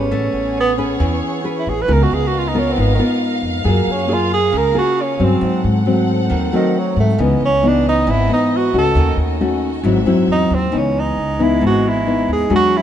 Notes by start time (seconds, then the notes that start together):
Already playing: G#1 A3 C#4 G#4 B4
0.11 A1 A3 B3 G#4 C#5
0.33 A1
0.60 B3
0.78 C#4 G#4 B4
1.00 E2 E3
1.44 C#4 G#4 B4
1.59 E4
1.67 A1 G#4
1.81 B4
1.88 C#2 C#3 B3 F4 A#4 D#5 F5
1.92 A#4
2.03 F#4
2.11 C#2 G#4
2.27 F#4
2.38 F4
2.48 D#4
2.54 B3 C#4 F4 A#4
2.71 C4
2.76 G#1 G#2
2.81 B3
2.94 D#3
2.99 B3 F4 A#4
3.42 F2
3.64 F#2 F#3 A#3 F4 G#4
3.69 A#3
3.87 F#2
3.91 C#4
4.08 A#3 F4 G#4
4.13 F4
4.33 G#4
4.53 C#2 C#3
4.57 A#4
4.74 A#3 F4 G#4
4.78 F#4
5.02 C#4
5.19 G2 F#3 C4
5.23 C4
5.41 G#2 C4 A4 F#5
5.64 G#2
5.86 F#3 A3 C4
6.30 D#2 D#3
6.53 D#3 F#3 A3 C4
6.79 F#3
6.96 G#2 A3
7.18 C#2 C#3 E3 B3 D#4 D#5
7.40 C#2
7.45 C#4
7.63 E3 B3 D#4
7.68 D4
7.89 D#4
8.07 G#1 G#2 E4
8.29 E3 B3 D#4
8.33 D#4
8.57 F#4
8.73 C#2 A3 C#4 F#4
8.78 A4
8.95 D#2 D#3 C#4 F#4
9.17 D#2
9.41 A3 C#4 F#4
9.84 G#1 G#2 F#3 C4 E4 E5
10.06 F#2 F#3 C4 E4
10.27 E2
10.32 D#4
10.50 D#2 C4
10.72 C#2 C#3 E3 G#3 B3 D#4
10.77 C#4
10.99 D#4
11.17 C#2
11.39 E3 B3 D#4 E4
11.61 G#1 G#2
11.66 F#4
11.89 E4
12.06 E3 B3 D#4
12.28 D#2
12.33 G#4
12.49 E2 E3 F#3 G#3 D4 F#4
12.56 F#4
12.77 E4